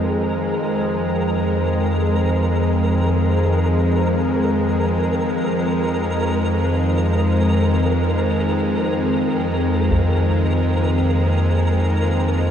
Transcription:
0.00 12.51 F2 medium
0.00 12.51 D#3 medium
0.00 10.83 G#3 medium
0.00 12.51 G#3 medium
0.00 12.51 C4 medium
0.00 12.51 A#4 medium
9.91 taiko medium
10.58 12.51 A#3 medium

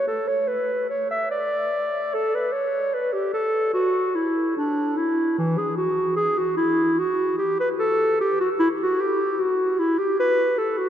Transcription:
0.07 0.29 A4 medium
0.28 0.49 C#5 medium
0.48 0.89 B4 medium
0.89 1.10 C#5 medium
1.11 1.30 E5 medium
1.31 2.15 D5 medium
2.14 2.36 A4 medium
2.34 2.54 B4 medium
2.52 2.95 C#5 medium
2.94 3.14 B4 medium
3.13 3.33 G4 medium
3.33 3.73 A4 medium
3.73 4.16 F#4 medium
4.15 4.56 E4 medium
4.57 4.99 D4 medium
4.97 5.37 E4 medium
5.38 5.59 E3 medium
5.58 5.76 G#4 medium
5.77 6.16 F#4 medium
6.16 6.39 G#4 medium
6.38 6.56 F#4 medium
6.57 7.00 E4 medium
6.98 7.37 F#4 medium
7.38 7.58 G4 medium
7.60 7.69 B4 medium
7.79 8.18 A4 medium
8.20 8.39 G4 medium
8.40 8.49 F#4 medium
8.59 8.68 E4 medium
8.81 9.02 F#4 medium
9.01 9.41 G4 medium
9.40 9.81 F#4 medium
9.79 10.00 E4 medium
9.98 10.18 G4 medium
10.19 10.59 B4 loud
10.58 10.79 A4 medium
10.78 10.89 F#4 medium

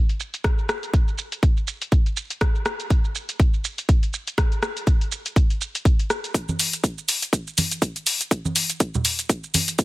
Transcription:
0.09 closed hi-hat soft
0.09 shaker soft
0.20 shaker medium
0.34 closed hi-hat soft
0.34 shaker soft
0.44 kick loud
0.44 cross-stick medium
0.44 closed hi-hat medium
0.44 shaker soft
0.58 shaker soft
0.69 cross-stick medium
0.69 shaker medium
0.83 closed hi-hat soft
0.83 shaker soft
0.94 kick loud
0.94 closed hi-hat medium
0.94 shaker soft
1.08 shaker soft
1.18 shaker medium
1.32 closed hi-hat soft
1.32 shaker soft
1.43 kick loud
1.43 closed hi-hat medium
1.43 shaker soft
1.57 shaker soft
1.67 shaker medium
1.82 closed hi-hat soft
1.82 shaker soft
1.92 kick loud
1.92 closed hi-hat medium
1.92 shaker soft
2.06 closed hi-hat soft
2.06 shaker soft
2.17 shaker medium
2.30 closed hi-hat soft
2.30 shaker soft
2.41 kick loud
2.41 cross-stick medium
2.41 closed hi-hat medium
2.41 shaker soft
2.55 shaker soft
2.66 cross-stick medium
2.66 shaker medium
2.80 closed hi-hat medium
2.80 shaker soft
2.90 kick loud
2.90 closed hi-hat medium
2.90 shaker soft
3.04 shaker soft
3.15 shaker medium
3.29 closed hi-hat medium
3.29 shaker soft
3.40 kick loud
3.40 closed hi-hat medium
3.40 shaker soft
3.54 shaker soft
3.64 shaker medium
3.78 closed hi-hat soft
3.78 shaker soft
3.89 kick loud
3.89 closed hi-hat medium
3.89 shaker soft
4.03 closed hi-hat soft
4.03 shaker soft
4.13 shaker medium
4.27 closed hi-hat soft
4.27 shaker soft
4.38 kick loud
4.38 cross-stick medium
4.38 closed hi-hat medium
4.38 shaker soft
4.52 closed hi-hat soft
4.52 shaker soft
4.63 cross-stick medium
4.63 shaker medium
4.77 closed hi-hat medium
4.77 shaker soft
4.87 kick loud
4.87 closed hi-hat medium
4.87 shaker soft
5.01 closed hi-hat soft
5.01 shaker soft
5.12 shaker medium
5.26 closed hi-hat medium
5.26 shaker soft
5.36 kick loud
5.36 closed hi-hat medium
5.36 shaker soft
5.50 closed hi-hat soft
5.50 shaker soft
5.61 shaker medium
5.75 closed hi-hat medium
5.75 shaker soft
5.85 kick loud
5.85 closed hi-hat medium
5.85 shaker soft
5.99 closed hi-hat soft
5.99 shaker soft
6.10 cross-stick medium
6.10 shaker medium
6.24 closed hi-hat medium
6.24 shaker soft
6.34 kick loud
6.34 closed hi-hat medium
6.34 shaker soft
6.49 high conga medium
6.49 shaker soft
6.59 open hi-hat loud
6.59 shaker medium
6.73 closed hi-hat medium
6.73 tambourine medium
6.73 shaker soft
6.84 kick loud
6.84 closed hi-hat medium
6.84 shaker soft
6.98 shaker soft
7.09 open hi-hat loud
7.09 tambourine medium
7.09 shaker medium
7.22 closed hi-hat medium
7.22 tambourine soft
7.22 shaker soft
7.33 kick loud
7.33 closed hi-hat medium
7.33 shaker soft
7.47 shaker soft
7.57 open hi-hat loud
7.57 tambourine medium
7.57 high conga medium
7.57 shaker medium
7.71 closed hi-hat medium
7.71 tambourine medium
7.71 shaker soft
7.82 kick loud
7.82 closed hi-hat medium
7.82 shaker soft
7.96 closed hi-hat soft
7.96 shaker soft
8.07 open hi-hat loud
8.07 tambourine medium
8.07 shaker medium
8.20 closed hi-hat medium
8.20 tambourine medium
8.20 shaker soft
8.31 kick loud
8.31 closed hi-hat medium
8.31 shaker soft
8.45 high conga loud
8.45 shaker soft
8.56 open hi-hat loud
8.56 tambourine medium
8.56 shaker medium
8.69 closed hi-hat medium
8.69 tambourine soft
8.69 shaker soft
8.80 kick loud
8.80 closed hi-hat medium
8.80 shaker soft
8.94 low conga medium
8.94 shaker soft
9.05 open hi-hat loud
9.05 tambourine medium
9.05 shaker medium
9.19 closed hi-hat medium
9.19 tambourine soft
9.19 shaker soft
9.29 kick loud
9.29 closed hi-hat medium
9.29 shaker soft
9.44 shaker soft
9.54 open hi-hat loud
9.54 tambourine medium
9.54 high conga medium
9.54 shaker medium
9.68 closed hi-hat medium
9.68 tambourine medium
9.68 shaker soft
9.79 kick loud
9.79 closed hi-hat medium
9.79 shaker soft

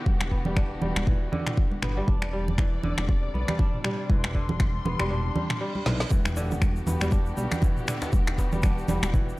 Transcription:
0.00 1.31 D3 medium
0.00 2.04 E3 medium
0.00 0.31 B3 medium
0.00 2.04 B3 medium
0.00 0.56 D4 loud
0.00 2.04 F#4 medium
0.00 2.04 G4 medium
0.06 0.77 E1 loud
0.06 kick loud
0.06 high conga medium
0.21 finger snap medium
0.21 muted conga medium
0.31 1.82 B3 medium
0.31 kick medium
0.45 0.81 G3 loud
0.45 low conga loud
0.56 2.07 D4 loud
0.56 finger snap medium
0.56 kick loud
0.56 muted conga soft
0.56 high conga loud
0.82 0.92 E1 medium
0.82 1.37 G3 loud
0.82 low conga loud
0.96 1.27 E1 loud
0.96 finger snap medium
0.96 muted conga medium
0.96 high conga loud
1.07 1.37 E3 medium
1.07 kick loud
1.07 mid tom medium
1.32 2.13 D3 loud
1.32 low conga loud
1.46 finger snap medium
1.46 mid tom medium
1.46 muted conga soft
1.57 kick loud
1.71 high conga medium
1.82 2.01 G1 medium
1.82 3.33 B3 medium
1.82 finger snap medium
1.82 mid tom medium
1.82 muted conga soft
1.97 2.13 G3 loud
2.08 2.78 E1 loud
2.08 6.07 C3 medium
2.08 6.07 G3 medium
2.08 3.59 D4 loud
2.08 6.07 D4 medium
2.08 4.08 D5 medium
2.08 kick loud
2.08 high conga medium
2.22 finger snap medium
2.22 muted conga medium
2.33 2.89 G3 medium
2.48 low conga loud
2.58 2.89 E3 medium
2.58 finger snap medium
2.58 kick loud
2.58 muted conga soft
2.58 high conga medium
2.83 2.94 E1 medium
2.83 4.33 D3 loud
2.83 low conga medium
2.98 3.29 E1 loud
2.98 finger snap medium
2.98 muted conga soft
2.98 high conga medium
3.09 kick loud
3.34 3.44 B1 medium
3.34 4.85 B3 medium
3.34 high conga medium
3.48 3.83 G3 loud
3.48 finger snap medium
3.48 muted conga soft
3.48 low conga medium
3.59 5.10 D4 loud
3.59 kick loud
3.59 low conga medium
3.73 mid tom medium
3.84 4.40 G3 medium
3.84 finger snap medium
3.84 mid tom loud
3.84 muted conga soft
4.09 4.80 E1 loud
4.09 4.40 E3 medium
4.09 6.09 C6 medium
4.09 kick loud
4.09 high conga medium
4.24 finger snap medium
4.24 muted conga medium
4.35 6.16 D3 loud
4.35 kick medium
4.49 low conga loud
4.60 finger snap medium
4.60 kick loud
4.60 muted conga soft
4.60 high conga medium
4.85 4.95 E1 medium
4.85 6.71 B3 medium
4.85 low conga loud
4.99 5.31 E1 loud
4.99 5.35 G3 loud
4.99 finger snap medium
4.99 muted conga medium
4.99 high conga loud
5.10 6.78 D4 medium
5.10 mid tom medium
5.10 reverse cymbal medium
5.36 5.59 G3 medium
5.36 low conga loud
5.50 finger snap medium
5.50 mid tom medium
5.50 muted conga soft
5.61 5.74 G3 loud
5.75 6.16 G3 medium
5.75 high conga medium
5.86 6.05 B1 medium
5.86 6.10 E3 medium
5.86 snare medium
5.86 mid tom loud
5.86 muted conga soft
6.00 snare medium
6.10 6.82 E1 loud
6.10 9.39 E3 medium
6.10 6.41 E3 medium
6.10 9.39 B3 medium
6.10 9.39 F#4 medium
6.10 9.39 G4 medium
6.10 kick loud
6.10 high conga medium
6.10 shaker medium
6.25 finger snap medium
6.25 muted conga medium
6.25 djembe tone medium
6.25 shaker soft
6.36 7.87 D3 loud
6.36 djembe slap medium
6.36 shaker loud
6.51 low conga loud
6.51 shaker soft
6.61 finger snap medium
6.61 kick loud
6.61 muted conga soft
6.61 high conga loud
6.61 shaker soft
6.76 shaker soft
6.87 6.97 E1 medium
6.87 8.38 B3 medium
6.87 djembe slap medium
6.87 djembe tone medium
6.87 low conga loud
6.87 shaker medium
7.01 7.32 E1 medium
7.01 7.36 G3 loud
7.01 finger snap medium
7.01 muted conga soft
7.01 high conga loud
7.01 shaker soft
7.11 8.63 D4 medium
7.11 kick loud
7.11 shaker soft
7.26 shaker soft
7.37 7.48 B1 medium
7.37 7.93 G3 loud
7.37 high conga medium
7.37 shaker medium
7.51 finger snap medium
7.51 muted conga soft
7.51 low conga medium
7.51 shaker soft
7.62 7.93 E3 medium
7.62 kick loud
7.62 low conga loud
7.62 shaker medium
7.77 mid tom medium
7.77 shaker soft
7.88 9.38 D3 medium
7.88 finger snap medium
7.88 mid tom medium
7.88 muted conga medium
7.88 shaker medium
8.02 djembe slap loud
8.02 shaker soft
8.13 8.84 E1 loud
8.13 kick loud
8.13 high conga loud
8.13 shaker medium
8.27 finger snap medium
8.27 muted conga medium
8.27 djembe tone medium
8.27 shaker soft
8.38 9.39 B3 medium
8.38 kick medium
8.38 djembe slap medium
8.38 shaker medium
8.52 8.87 G3 loud
8.52 low conga loud
8.52 shaker soft
8.63 9.39 D4 loud
8.63 finger snap medium
8.63 kick loud
8.63 muted conga soft
8.63 high conga loud
8.63 shaker medium
8.78 shaker soft
8.88 8.99 E1 medium
8.88 9.39 G3 loud
8.88 djembe slap medium
8.88 djembe tone medium
8.88 low conga loud
8.88 shaker medium
9.03 9.34 E1 loud
9.03 finger snap medium
9.03 muted conga medium
9.03 high conga loud
9.03 shaker soft
9.14 9.39 E3 medium
9.14 kick loud
9.14 mid tom medium
9.14 shaker soft
9.29 shaker soft

